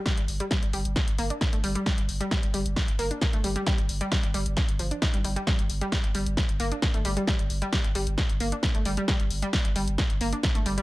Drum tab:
HH |xxoxxxoxxxoxxxox|xxoxxxoxxxoxxxox|xxoxxxoxxxoxxxox|xxoxxxoxxxoxxxox|
SD |o---o---o---o---|o---o---o---o---|o---o---o---o---|o---o---o---o---|
BD |o---o---o---o---|o---o---o---o---|o---o---o---o---|o---o---o---o---|

HH |xxoxxxoxxxoxxxox|xxoxxxoxxxoxxxox|
SD |o---o---o---o---|o---o---o---o---|
BD |o---o---o---o---|o---o---o---o---|